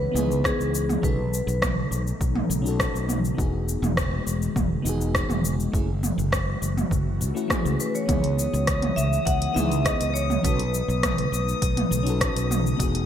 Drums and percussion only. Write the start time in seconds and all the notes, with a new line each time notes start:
0.16 mid tom, shaker
0.31 shaker
0.44 kick, cross-stick, shaker
0.61 shaker
0.75 shaker
0.89 mid tom, shaker
1.03 kick, shaker
1.34 shaker
1.48 shaker
1.62 kick, cross-stick, mid tom, shaker
1.92 shaker
2.07 shaker
2.21 kick, shaker
2.35 mid tom
2.51 shaker
2.66 shaker
2.80 kick, cross-stick, shaker
2.96 shaker
3.09 mid tom, shaker
3.25 shaker
3.38 kick, shaker
3.69 shaker
3.83 mid tom, shaker
3.97 kick, cross-stick, shaker
4.27 shaker
4.42 shaker
4.56 kick, mid tom, shaker
4.86 shaker
5.01 shaker
5.15 kick, cross-stick, shaker
5.30 mid tom, shaker
5.45 shaker
5.60 shaker
5.74 kick, shaker
6.03 mid tom, shaker
6.19 shaker
6.32 kick, cross-stick, shaker
6.63 shaker
6.77 mid tom, shaker
6.91 kick, shaker
7.22 shaker
7.37 shaker
7.50 kick, cross-stick, mid tom, shaker
7.66 shaker
7.80 shaker
7.95 shaker
8.09 kick, closed hi-hat, mid tom, shaker
8.24 closed hi-hat
8.39 shaker
8.54 shaker
8.67 kick, cross-stick, closed hi-hat, shaker
8.82 closed hi-hat, mid tom
8.98 shaker
9.13 shaker
9.27 kick, closed hi-hat, shaker
9.42 closed hi-hat
9.56 mid tom, shaker
9.72 closed hi-hat, shaker
9.85 kick, cross-stick, closed hi-hat, shaker
10.01 closed hi-hat, shaker
10.16 shaker
10.30 mid tom, shaker
10.44 kick, closed hi-hat, shaker
10.59 closed hi-hat
10.74 shaker
10.90 shaker
11.03 kick, cross-stick, closed hi-hat, mid tom, shaker
11.18 closed hi-hat
11.34 shaker
11.49 shaker
11.62 kick, closed hi-hat, shaker
11.77 closed hi-hat, mid tom
11.92 shaker
12.07 closed hi-hat, shaker
12.21 kick, cross-stick, closed hi-hat, shaker
12.36 closed hi-hat, shaker
12.51 mid tom, shaker
12.67 shaker
12.80 kick, closed hi-hat, shaker
12.95 closed hi-hat